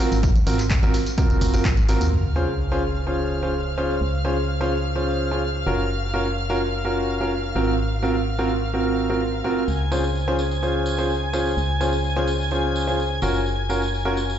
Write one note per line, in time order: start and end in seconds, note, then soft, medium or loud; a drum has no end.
0.00 0.16 C4 medium
0.00 0.16 F4 medium
0.00 0.16 F#4 medium
0.00 0.16 A#4 loud
0.12 0.44 G#1 medium
0.12 closed hi-hat medium
0.12 tambourine soft
0.12 tambourine medium
0.23 kick loud
0.23 closed hi-hat medium
0.23 tambourine soft
0.23 tambourine medium
0.36 closed hi-hat soft
0.36 tambourine soft
0.47 0.79 G#1 loud
0.47 0.57 C4 medium
0.47 0.57 F4 medium
0.47 0.57 F#4 medium
0.47 0.57 A#4 loud
0.47 open hi-hat loud
0.47 tambourine medium
0.59 clap soft
0.59 closed hi-hat medium
0.59 tambourine soft
0.59 tambourine medium
0.70 kick loud
0.70 clap loud
0.70 closed hi-hat medium
0.70 tambourine medium
0.83 0.92 G#1 medium
0.83 0.92 C4 loud
0.83 0.92 F4 medium
0.83 0.92 F#4 medium
0.83 0.92 A#4 loud
0.83 closed hi-hat soft
0.83 tambourine soft
0.94 open hi-hat medium
0.94 tambourine medium
1.06 closed hi-hat medium
1.06 tambourine soft
1.06 tambourine medium
1.18 1.51 C4 medium
1.18 1.51 F4 medium
1.18 1.51 F#4 medium
1.18 1.51 A#4 medium
1.18 kick loud
1.18 closed hi-hat medium
1.18 tambourine soft
1.18 tambourine medium
1.30 1.66 F#1 loud
1.30 closed hi-hat soft
1.30 tambourine soft
1.41 kick medium
1.41 open hi-hat loud
1.41 tambourine medium
1.53 1.63 C4 medium
1.53 1.63 F4 medium
1.53 1.63 F#4 medium
1.53 1.63 A#4 medium
1.53 closed hi-hat medium
1.53 tambourine soft
1.53 tambourine medium
1.65 1.97 G#1 medium
1.65 kick loud
1.65 clap loud
1.65 closed hi-hat medium
1.65 tambourine medium
1.77 closed hi-hat soft
1.77 tambourine soft
1.89 2.05 C4 medium
1.89 2.05 F4 medium
1.89 2.05 F#4 medium
1.89 2.05 A#4 loud
1.89 open hi-hat medium
1.89 tambourine medium
2.01 2.10 D#2 medium
2.01 closed hi-hat medium
2.01 tambourine soft
2.01 tambourine medium
2.12 3.99 C#2 medium
2.12 9.69 F5 medium
2.12 9.69 F6 medium
2.12 crash medium
2.12 sub drop medium
2.36 2.46 C#4 medium
2.36 2.46 F4 medium
2.36 2.46 G#4 medium
2.36 2.46 C5 medium
2.72 2.81 C#4 medium
2.72 2.81 F4 medium
2.72 2.81 G#4 medium
2.72 2.81 C5 loud
3.07 3.40 C#4 medium
3.07 3.40 F4 medium
3.07 3.40 G#4 medium
3.07 3.40 C5 medium
3.43 3.52 C#4 medium
3.43 3.52 F4 medium
3.43 3.52 G#4 medium
3.43 3.52 C5 medium
3.78 3.94 C#4 medium
3.78 3.94 F4 medium
3.78 3.94 G#4 medium
3.78 3.94 C5 medium
4.01 5.64 C#2 medium
4.25 4.35 C#4 medium
4.25 4.35 F4 medium
4.25 4.35 G#4 medium
4.25 4.35 C5 medium
4.61 4.70 C#4 medium
4.61 4.70 F4 medium
4.61 4.70 G#4 medium
4.61 4.70 C5 loud
4.96 5.29 C#4 medium
4.96 5.29 F4 medium
4.96 5.29 G#4 medium
4.96 5.29 C5 medium
5.31 5.41 C#4 medium
5.31 5.41 F4 medium
5.31 5.41 G#4 medium
5.31 5.41 C5 medium
5.66 7.53 F#1 medium
5.66 5.83 C#4 medium
5.66 5.83 F4 medium
5.66 5.83 F#4 medium
5.66 5.83 A#4 medium
6.14 6.24 C#4 medium
6.14 6.24 F4 medium
6.14 6.24 F#4 medium
6.14 6.24 A#4 medium
6.50 6.59 C#4 medium
6.50 6.59 F4 medium
6.50 6.59 F#4 medium
6.50 6.59 A#4 loud
6.85 7.18 C#4 medium
6.85 7.18 F4 medium
6.85 7.18 F#4 medium
6.85 7.18 A#4 medium
7.21 7.30 C#4 medium
7.21 7.30 F4 medium
7.21 7.30 F#4 medium
7.21 7.30 A#4 medium
7.55 9.42 G#1 medium
7.55 7.72 C4 medium
7.55 7.72 F4 medium
7.55 7.72 F#4 medium
7.55 7.72 A#4 medium
8.03 8.13 C4 medium
8.03 8.13 F4 medium
8.03 8.13 F#4 medium
8.03 8.13 A#4 medium
8.39 8.48 C4 medium
8.39 8.48 F4 medium
8.39 8.48 F#4 medium
8.39 8.48 A#4 medium
8.74 9.07 C4 medium
8.74 9.07 F4 medium
8.74 9.07 F#4 medium
8.74 9.07 A#4 medium
9.10 9.19 C4 medium
9.10 9.19 F4 medium
9.10 9.19 F#4 medium
9.10 9.19 A#4 medium
9.44 9.61 C4 medium
9.44 9.61 F4 medium
9.44 9.61 F#4 medium
9.44 9.61 A#4 medium
9.68 11.55 C#2 medium
9.68 14.39 G#5 medium
9.68 14.39 G#6 medium
9.68 tambourine soft
9.92 10.02 C#4 medium
9.92 10.02 F4 medium
9.92 10.02 G#4 medium
9.92 10.02 C5 medium
9.92 tambourine medium
10.04 tambourine soft
10.15 tambourine soft
10.28 10.37 C#4 medium
10.28 10.37 F4 medium
10.28 10.37 G#4 medium
10.28 10.37 C5 loud
10.39 tambourine medium
10.51 tambourine soft
10.62 10.96 C#4 medium
10.62 10.96 F4 medium
10.62 10.96 G#4 medium
10.62 10.96 C5 medium
10.62 tambourine soft
10.86 tambourine medium
10.98 11.08 C#4 medium
10.98 11.08 F4 medium
10.98 11.08 G#4 medium
10.98 11.08 C5 medium
10.98 tambourine soft
11.10 tambourine soft
11.33 11.50 C#4 medium
11.33 11.50 F4 medium
11.33 11.50 G#4 medium
11.33 11.50 C5 medium
11.33 tambourine medium
11.45 tambourine soft
11.57 13.20 C#2 medium
11.57 tambourine soft
11.80 11.91 C#4 medium
11.80 11.91 F4 medium
11.80 11.91 G#4 medium
11.80 11.91 C5 medium
11.80 tambourine medium
11.93 tambourine medium
12.04 tambourine soft
12.16 12.26 C#4 medium
12.16 12.26 F4 medium
12.16 12.26 G#4 medium
12.16 12.26 C5 loud
12.28 tambourine medium
12.41 tambourine soft
12.51 12.85 C#4 medium
12.51 12.84 F4 medium
12.51 12.84 G#4 medium
12.51 12.84 C5 medium
12.51 tambourine soft
12.76 tambourine medium
12.87 12.97 C#4 medium
12.87 12.97 F4 medium
12.87 12.97 G#4 medium
12.87 12.97 C5 medium
12.87 tambourine soft
13.00 tambourine soft
13.22 14.39 F#1 medium
13.22 13.39 C#4 medium
13.22 13.39 F4 medium
13.22 13.39 F#4 medium
13.22 13.39 A#4 medium
13.22 tambourine medium
13.34 tambourine soft
13.46 tambourine soft
13.69 13.80 C#4 medium
13.69 13.80 F4 medium
13.69 13.80 F#4 medium
13.69 13.80 A#4 medium
13.69 tambourine medium
13.82 tambourine soft
13.94 tambourine soft
14.05 14.15 C#4 medium
14.05 14.15 F4 medium
14.05 14.15 F#4 medium
14.05 14.15 A#4 loud
14.17 tambourine medium
14.30 tambourine medium